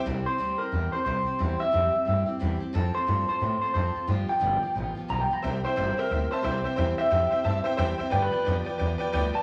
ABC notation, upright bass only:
X:1
M:4/4
L:1/8
Q:"Swing" 1/4=178
K:C
V:1 name="Upright bass" clef=bass
C,, z D,, z E,, z C,, z | E,, z F,, z G,, z E,, z | F,, z G,, z A,, z F,, z | G,, z G,,, z A,,, z B,,, z |
C,, z G,,, z D,, z C,, z | E,, z F,, z G,, z E,, z | G,, z F,, z E,, z D,, z |]